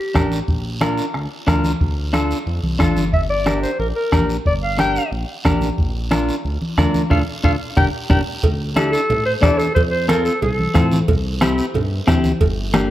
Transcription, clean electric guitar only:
0.14 0.38 D4 medium
0.14 0.38 G4 medium
0.14 0.39 A#4 medium
0.81 1.04 D4 medium
0.81 1.05 F4 medium
0.81 1.05 A#4 medium
1.47 1.71 D4 medium
1.47 1.71 F4 medium
1.47 1.71 A#4 medium
2.13 2.37 D4 medium
2.13 2.37 F4 medium
2.13 2.37 A4 medium
2.79 3.03 D4 medium
2.79 3.03 F4 medium
2.79 3.03 A4 medium
3.46 3.69 D4 medium
3.46 3.70 G4 medium
3.46 3.70 A#4 medium
4.12 4.36 D4 medium
4.12 4.36 G4 soft
4.12 4.36 A#4 medium
4.78 5.02 D4 medium
4.78 5.02 G4 medium
4.78 5.02 A#4 medium
5.45 5.68 D4 medium
5.45 5.68 G4 medium
5.45 5.69 A#4 medium
6.11 6.34 D4 medium
6.11 6.35 F4 medium
6.11 6.35 A#4 medium
6.78 7.01 D4 medium
6.78 7.01 F4 medium
6.78 7.01 A#4 medium
7.10 7.21 D4 medium
7.10 7.21 F4 medium
7.10 7.21 A4 medium
7.44 7.55 D4 medium
7.44 7.55 F4 medium
7.44 7.55 A4 medium
7.77 7.88 D4 medium
7.77 7.88 G4 medium
7.77 7.88 A#4 medium
8.10 8.21 D4 loud
8.10 8.21 G4 medium
8.10 8.21 A#4 medium
8.76 9.00 D4 medium
8.76 9.00 E4 medium
8.76 9.00 A4 medium
9.42 9.66 D4 medium
9.42 9.66 E4 medium
9.42 9.66 A4 medium
10.08 10.32 C4 medium
10.08 10.32 F4 medium
10.08 10.32 A4 medium
10.74 10.98 C4 medium
10.74 10.98 F4 medium
10.74 10.98 A4 medium
11.41 11.65 C4 loud
11.41 11.65 E4 medium
11.41 11.65 G4 loud
12.07 12.31 C4 medium
12.07 12.31 E4 medium
12.07 12.31 G4 loud
12.74 12.90 A#3 medium
12.74 12.90 D4 medium
12.74 12.90 G4 loud

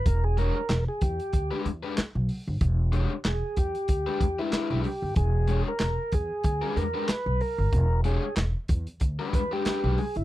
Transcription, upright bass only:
0.06 0.49 E1 loud
0.69 0.85 E1 loud
1.02 1.17 E2 loud
1.33 1.49 D2 medium
1.65 1.81 E2 medium
1.98 muted upright bass stroke medium
2.15 2.27 B1 medium
2.47 2.60 G1 medium
2.61 3.05 E1 loud
3.25 3.40 E1 medium
3.57 3.73 E2 medium
3.89 4.04 D2 medium
4.21 4.36 E2 medium
4.53 muted upright bass stroke soft
4.70 4.83 B1 medium
5.02 5.15 G1 medium
5.16 5.60 E1 loud
5.80 5.96 E1 medium
6.13 6.28 E2 loud
6.44 6.60 D2 medium
6.76 6.92 E2 medium
7.09 muted upright bass stroke soft
7.26 7.39 B1 medium
7.58 7.71 G1 medium
7.72 8.16 E1 loud
8.37 8.53 E1 medium
8.69 8.85 E2 loud
9.01 9.17 D2 medium
9.33 9.49 E2 medium
9.66 muted upright bass stroke medium
9.84 9.96 B1 medium
10.16 10.24 G1 medium

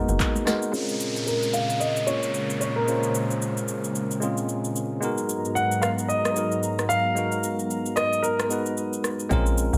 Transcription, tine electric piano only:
0.00 0.45 G#3 medium
0.00 0.76 A#3 medium
0.00 0.46 B3 medium
0.00 0.47 D#4 medium
0.00 0.48 F#4 medium
0.00 0.76 G#4 medium
0.00 0.49 A#4 loud
0.45 0.68 G#3 medium
0.45 0.69 B3 medium
0.45 0.69 D#4 medium
0.45 0.70 F#4 medium
0.45 0.70 A#4 medium
0.72 1.59 G#3 medium
0.72 1.60 C4 medium
0.72 1.60 C#4 medium
0.72 1.61 F4 medium
0.72 1.61 A#4 loud
2.06 2.73 G#3 medium
2.06 2.73 A#3 medium
2.06 2.74 C#4 medium
2.06 2.74 F4 medium
2.06 2.75 C#5 medium
2.86 3.74 G#3 medium
2.86 3.75 C#4 medium
2.86 3.75 F4 medium
2.86 2.89 C5 medium
2.86 2.96 C5 medium
2.96 3.79 C#5 medium
4.20 4.87 G#3 medium
4.20 4.88 C4 medium
4.20 4.88 C#4 medium
4.20 4.88 F4 medium
4.20 4.89 G#4 medium
5.01 5.88 G#3 medium
5.01 5.89 B3 medium
5.01 5.89 D#4 medium
5.01 5.89 F#4 medium
5.01 5.90 A#4 medium
6.35 7.01 G#3 medium
6.35 7.02 B3 medium
6.35 7.02 D#4 medium
6.35 7.03 F#4 medium
6.35 7.03 A#4 medium
7.15 8.02 G#3 medium
7.15 8.03 B3 medium
7.15 8.03 D#4 medium
7.15 8.04 F#4 medium
7.15 8.04 A#4 medium
8.49 9.16 G#3 medium
8.49 9.16 B3 medium
8.49 9.17 D#4 medium
8.49 9.17 F#4 medium
8.49 9.18 B4 medium
9.29 9.78 G#3 loud
9.29 9.78 C4 medium
9.29 9.78 C#4 medium
9.29 9.78 F4 medium
9.29 9.78 A#4 loud

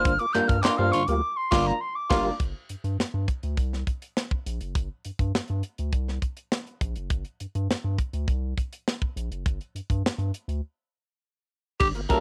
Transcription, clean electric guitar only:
0.00 0.12 A#3 medium
0.00 0.12 D4 medium
0.00 0.12 F4 medium
0.00 0.12 C5 medium
0.35 0.56 A#3 medium
0.35 0.56 D4 medium
0.35 0.56 F4 medium
0.35 0.56 A#4 loud
0.64 0.78 A#3 medium
0.64 0.78 D4 medium
0.64 0.77 F4 medium
0.64 0.78 A#4 medium
0.78 1.00 A#3 medium
0.78 1.00 D4 medium
0.78 1.00 F4 medium
0.78 0.99 C5 medium
1.52 1.73 A#3 medium
1.52 1.73 D4 medium
1.52 1.72 F4 loud
1.52 1.72 A#4 loud
2.11 2.31 A#3 loud
2.11 2.31 D4 loud
2.11 2.31 F4 loud
2.11 2.31 A#4 loud
12.09 12.20 G3 medium
12.09 12.20 D4 medium
12.09 12.20 F4 medium
12.09 12.20 A#4 medium

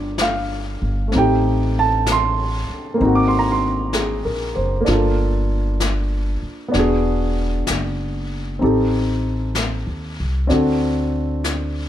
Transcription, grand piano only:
0.00 1.12 A#3 soft
0.00 1.13 D4 soft
0.00 1.14 D#4 soft
0.00 1.14 F4 soft
0.00 1.15 G4 soft
0.00 1.15 C6 medium
0.00 1.14 D6 medium
0.21 1.17 F5 medium
1.08 2.98 A3 soft
1.08 2.96 C4 soft
1.16 3.00 D#4 soft
1.16 3.03 G4 soft
1.16 1.79 G5 medium
1.79 2.10 A5 medium
2.12 3.13 C6 medium
2.94 4.79 A#3 soft
2.94 4.86 C4 soft
3.01 4.88 D#4 soft
3.01 4.90 F#4 soft
3.15 3.27 D6 medium
3.28 3.39 C6 medium
3.39 3.50 A#5 medium
3.52 3.63 C6 medium
3.94 4.52 G#4 soft
4.25 4.73 A#4 soft
4.56 5.04 C5 soft
4.81 6.71 A#3 soft
4.85 6.70 D4 soft
4.85 6.75 F4 soft
4.92 6.76 A4 soft
6.68 8.59 B3 soft
6.68 8.60 D4 soft
6.75 8.62 F#4 soft
6.75 8.64 G#4 medium
8.59 10.46 C4 soft
8.59 10.49 D#4 soft
8.59 10.50 G4 soft
8.64 10.50 A4 soft
10.47 11.89 C4 soft
10.47 11.89 D4 soft
10.47 11.89 F#4 soft
10.52 11.89 A4 soft

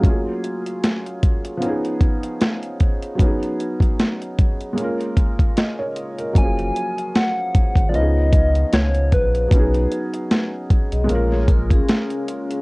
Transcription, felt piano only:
0.00 1.56 F#3 medium
0.00 0.10 A3 soft
0.00 1.59 C#4 medium
0.06 1.61 A#3 medium
0.06 1.60 F4 medium
0.06 1.61 G#4 medium
1.57 3.14 F3 medium
1.57 3.16 B3 medium
1.63 3.17 C#4 medium
1.63 3.19 D#4 medium
1.68 3.20 G#4 medium
3.15 4.72 F#3 medium
3.15 4.74 B3 medium
3.21 4.75 C#4 medium
3.21 4.77 D#4 medium
3.26 4.78 G#4 medium
4.73 6.30 G#3 medium
4.73 6.32 A#3 medium
4.79 6.33 C#4 medium
4.79 6.34 F4 medium
4.84 5.20 A#4 medium
5.58 5.78 D#5 medium
5.79 6.17 A#4 medium
5.79 6.16 C#5 medium
6.19 6.56 A#4 medium
6.33 7.89 F#3 medium
6.33 7.90 A#3 medium
6.39 7.88 F3 medium
6.39 7.92 C#4 medium
6.44 7.95 G#4 medium
7.89 9.46 F3 medium
7.89 9.47 B3 medium
7.94 9.49 C#4 medium
7.94 9.50 D#4 medium
8.00 9.52 G#4 medium
9.48 11.05 F#3 medium
9.48 11.06 B3 medium
9.54 11.07 C#4 medium
9.54 11.09 D#4 medium
9.59 11.10 G#4 medium
11.04 12.62 G#3 medium
11.04 12.62 A#3 medium
11.10 12.62 C#4 medium
11.10 12.62 F4 medium
11.15 12.62 A#4 medium

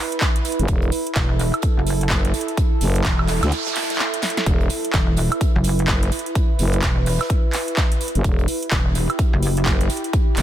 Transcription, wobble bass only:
1.16 1.52 E1 loud
1.77 2.09 F#1 medium
3.05 3.41 E1 loud
4.94 5.29 E1 loud
5.55 5.87 F#1 medium
6.83 7.18 E1 loud
8.72 9.07 E1 loud
9.33 9.65 F#1 loud

